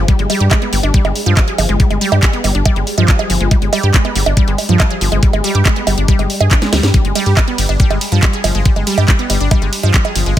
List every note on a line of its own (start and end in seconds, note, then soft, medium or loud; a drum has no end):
0.08 0.14 G3 medium
0.08 kick loud
0.08 closed hi-hat medium
0.19 0.27 G1 medium
0.19 0.24 G#3 medium
0.19 closed hi-hat soft
0.30 0.35 G3 loud
0.30 open hi-hat loud
0.30 high bongo soft
0.40 0.48 G2 medium
0.40 0.46 G4 medium
0.40 closed hi-hat soft
0.51 0.56 G#3 medium
0.51 kick loud
0.51 clap loud
0.51 closed hi-hat medium
0.51 high bongo medium
0.62 0.70 B3 medium
0.62 closed hi-hat soft
0.73 0.80 G1 loud
0.73 0.76 G3 medium
0.73 open hi-hat loud
0.83 0.91 G1 medium
0.83 0.86 D4 medium
0.83 closed hi-hat soft
0.83 high bongo soft
0.94 0.99 G3 loud
0.94 kick loud
0.94 closed hi-hat medium
1.05 1.12 G1 medium
1.05 1.08 G#3 medium
1.05 closed hi-hat soft
1.05 high bongo medium
1.16 open hi-hat loud
1.26 1.34 G2 medium
1.26 1.31 F3 loud
1.26 closed hi-hat soft
1.37 1.42 G3 medium
1.37 kick loud
1.37 clap loud
1.37 closed hi-hat medium
1.37 high bongo soft
1.48 1.56 G#4 medium
1.48 closed hi-hat soft
1.58 1.66 G1 medium
1.58 1.64 F3 medium
1.58 open hi-hat loud
1.58 high bongo medium
1.69 1.77 G1 medium
1.69 1.77 G#3 medium
1.69 closed hi-hat soft
1.80 1.85 G3 medium
1.80 kick loud
1.80 closed hi-hat medium
1.91 1.98 G1 medium
1.91 1.96 G#3 medium
1.91 closed hi-hat soft
1.91 high bongo soft
2.01 2.06 G3 loud
2.01 open hi-hat loud
2.12 2.20 G2 medium
2.12 2.17 G4 medium
2.12 closed hi-hat soft
2.12 high bongo medium
2.23 2.28 G#3 medium
2.23 kick loud
2.23 clap loud
2.23 closed hi-hat medium
2.33 2.41 B3 medium
2.33 closed hi-hat soft
2.44 2.52 G1 medium
2.44 2.47 G3 medium
2.44 open hi-hat loud
2.44 high bongo soft
2.55 2.62 G1 medium
2.55 2.58 D4 medium
2.55 closed hi-hat soft
2.66 2.71 G3 loud
2.66 kick loud
2.66 closed hi-hat medium
2.66 high bongo medium
2.76 2.84 G1 medium
2.76 2.79 G#3 medium
2.76 closed hi-hat soft
2.87 open hi-hat loud
2.98 3.05 G2 medium
2.98 3.03 F3 loud
2.98 closed hi-hat soft
2.98 high bongo soft
3.08 3.14 G3 medium
3.08 kick loud
3.08 clap loud
3.08 closed hi-hat medium
3.19 3.27 G#4 medium
3.19 closed hi-hat soft
3.19 high bongo medium
3.30 3.37 G1 medium
3.30 3.35 F3 medium
3.30 open hi-hat loud
3.40 3.48 G1 medium
3.40 3.48 G#3 medium
3.40 closed hi-hat soft
3.51 3.56 G3 medium
3.51 kick loud
3.51 closed hi-hat medium
3.51 high bongo soft
3.62 3.70 G1 medium
3.62 3.67 G#3 medium
3.62 closed hi-hat soft
3.73 3.78 G3 loud
3.73 open hi-hat loud
3.73 high bongo medium
3.83 3.91 G2 medium
3.83 3.89 G4 medium
3.83 closed hi-hat soft
3.94 3.99 G#3 medium
3.94 kick loud
3.94 clap loud
3.94 closed hi-hat medium
4.05 4.13 B3 medium
4.05 closed hi-hat soft
4.05 high bongo soft
4.15 4.23 G1 medium
4.15 4.19 G3 medium
4.15 open hi-hat loud
4.26 4.34 G1 medium
4.26 4.29 D4 medium
4.26 closed hi-hat soft
4.26 high bongo medium
4.37 4.42 G3 loud
4.37 kick loud
4.37 closed hi-hat medium
4.48 4.55 G1 medium
4.48 4.51 G#3 medium
4.48 closed hi-hat soft
4.58 open hi-hat loud
4.58 high bongo soft
4.69 4.77 G2 medium
4.69 4.74 F3 loud
4.69 closed hi-hat soft
4.80 4.85 G3 medium
4.80 kick loud
4.80 clap loud
4.80 closed hi-hat medium
4.80 high bongo medium
4.90 4.98 G#4 medium
4.90 closed hi-hat soft
5.01 5.09 G1 loud
5.01 5.06 F3 medium
5.01 open hi-hat loud
5.12 5.20 G1 medium
5.12 5.20 G#3 medium
5.12 closed hi-hat soft
5.12 high bongo soft
5.23 5.28 G3 medium
5.23 kick loud
5.23 closed hi-hat medium
5.33 5.41 G1 medium
5.33 5.39 G#3 medium
5.33 closed hi-hat soft
5.33 high bongo medium
5.44 5.49 G3 loud
5.44 open hi-hat loud
5.55 5.62 G2 medium
5.55 5.60 G4 medium
5.55 closed hi-hat soft
5.65 5.71 G#3 medium
5.65 kick loud
5.65 clap loud
5.65 closed hi-hat medium
5.65 high bongo soft
5.76 5.84 B3 medium
5.76 closed hi-hat soft
5.87 5.95 G1 medium
5.87 5.90 G3 medium
5.87 open hi-hat loud
5.87 high bongo medium
5.98 6.05 G1 medium
5.98 6.01 D4 medium
5.98 closed hi-hat soft
6.08 6.14 G3 loud
6.08 kick loud
6.08 closed hi-hat medium
6.19 6.27 G1 medium
6.19 6.22 G#3 medium
6.19 closed hi-hat soft
6.19 high bongo soft
6.30 open hi-hat loud
6.40 6.48 G2 medium
6.40 6.48 G#4 medium
6.40 closed hi-hat soft
6.40 high bongo medium
6.51 6.54 D4 medium
6.51 kick loud
6.51 clap loud
6.51 closed hi-hat medium
6.62 6.67 G#3 medium
6.62 snare medium
6.62 closed hi-hat soft
6.73 6.80 D2 medium
6.73 6.78 G3 loud
6.73 snare medium
6.73 open hi-hat loud
6.73 high bongo soft
6.83 6.91 G2 medium
6.83 snare medium
6.83 closed hi-hat soft
6.94 6.99 G3 medium
6.94 kick loud
6.94 closed hi-hat medium
7.05 7.12 G1 medium
7.05 7.10 G#3 medium
7.05 closed hi-hat soft
7.15 7.21 G3 loud
7.15 open hi-hat loud
7.15 ride medium
7.15 high bongo soft
7.26 7.34 G2 medium
7.26 7.31 G4 medium
7.26 closed hi-hat soft
7.37 7.42 G3 medium
7.37 kick loud
7.37 clap loud
7.37 closed hi-hat medium
7.37 high bongo medium
7.48 7.56 B3 medium
7.48 closed hi-hat soft
7.58 7.66 G1 loud
7.58 7.62 G3 medium
7.58 open hi-hat loud
7.58 ride medium
7.69 7.77 G1 medium
7.69 7.72 D4 medium
7.69 closed hi-hat soft
7.69 high bongo soft
7.80 7.85 G3 loud
7.80 kick loud
7.80 closed hi-hat medium
7.90 7.98 G1 medium
7.90 7.94 G#3 medium
7.90 closed hi-hat soft
7.90 high bongo medium
8.01 open hi-hat loud
8.01 ride medium
8.12 8.20 G2 medium
8.12 8.17 F3 loud
8.12 closed hi-hat soft
8.23 8.28 G3 medium
8.23 kick loud
8.23 clap loud
8.23 closed hi-hat medium
8.23 high bongo soft
8.33 8.41 G#4 medium
8.33 closed hi-hat soft
8.44 8.52 G1 medium
8.44 8.49 F3 medium
8.44 open hi-hat loud
8.44 ride medium
8.44 high bongo medium
8.55 8.62 G1 medium
8.55 8.63 G#3 medium
8.55 closed hi-hat soft
8.65 8.71 G3 medium
8.65 kick loud
8.65 closed hi-hat medium
8.76 8.84 G1 medium
8.76 8.81 G#3 medium
8.76 closed hi-hat soft
8.76 high bongo soft
8.87 8.92 G3 loud
8.87 open hi-hat loud
8.87 ride medium
8.98 9.05 G2 medium
8.98 9.03 G4 medium
8.98 closed hi-hat soft
8.98 high bongo medium
9.08 9.14 G3 medium
9.08 kick loud
9.08 clap loud
9.08 closed hi-hat medium
9.19 9.27 B3 medium
9.19 closed hi-hat soft
9.30 9.37 G1 loud
9.30 9.33 G3 medium
9.30 open hi-hat loud
9.30 ride medium
9.30 high bongo soft
9.40 9.48 G1 medium
9.40 9.44 D4 medium
9.40 closed hi-hat soft
9.51 9.56 G3 loud
9.51 kick loud
9.51 closed hi-hat medium
9.51 high bongo medium
9.62 9.70 G1 medium
9.62 9.65 G#3 medium
9.62 closed hi-hat soft
9.73 open hi-hat loud
9.73 ride medium
9.83 9.91 G2 medium
9.83 9.89 F3 loud
9.83 closed hi-hat soft
9.83 high bongo soft
9.94 9.99 G3 medium
9.94 kick loud
9.94 clap loud
9.94 closed hi-hat medium
10.05 10.13 G#4 medium
10.05 closed hi-hat soft
10.05 high bongo medium
10.15 10.23 G1 medium
10.15 10.21 F3 medium
10.15 open hi-hat loud
10.15 ride medium
10.26 10.34 G1 medium
10.26 10.34 G#3 medium
10.26 closed hi-hat soft